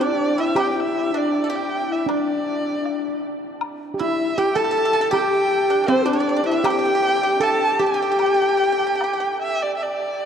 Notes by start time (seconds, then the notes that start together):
Already playing: C4
0.00 D4 D5
0.07 E4
0.14 D4
0.38 E4 E5
0.55 G4, high woodblock
0.60 G5
0.71 G5
0.75 E4
0.80 E5
1.13 D4
1.18 D5
1.44 A4
1.50 G4
1.55 G5
1.89 E4 E5
2.06 D4, high woodblock
2.13 D5
2.85 low woodblock
3.61 high woodblock
3.94 G4
3.99 E4 E5
4.38 G4 G5
4.55 A4 A5
4.64 A4
4.71 A4
4.77 A4
4.85 A4
4.93 A4
5.01 A4
5.11 G4 G5, high woodblock
5.70 D4
5.84 D4 C5
5.88 C4 C5, low woodblock
6.06 D4 D5
6.13 D4
6.20 D4
6.29 D4
6.36 D4
6.44 D4 E4 E5
6.51 D4
6.64 G4 G5, high woodblock
6.70 G4
6.79 G4
6.85 G4
6.95 G4
7.02 G4
7.09 G4
7.16 G4
7.22 G4
7.40 A4 A5, low woodblock
7.73 A4
7.79 G4 G5
7.86 G4
7.94 G4
8.02 G4
8.11 G4
8.19 G4, high woodblock
8.26 G4
8.34 G4
8.42 G4
8.49 G4
8.57 G4
8.64 G4
8.72 G4
8.79 G4
8.87 G4
8.95 G4
9.01 G4, high woodblock, low woodblock
9.13 G4
9.20 G4
9.42 E5
9.63 D5
9.77 E5
9.83 D5